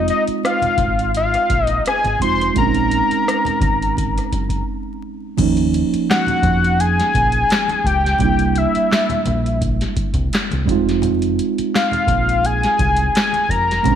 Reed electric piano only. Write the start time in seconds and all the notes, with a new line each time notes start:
Already playing: G#3 C4 D#4 F4
2.20 G#3 C4 D#4 F4
2.54 G#3 C4 C#4
2.61 D4
2.67 D#4
5.37 F3 A#3 C#4
5.42 D#4
8.19 G3 A#3 D4
8.25 E4
10.65 G3 C4
10.70 G#3 D#4 F4
13.83 G#3 C4 C#4
13.89 D4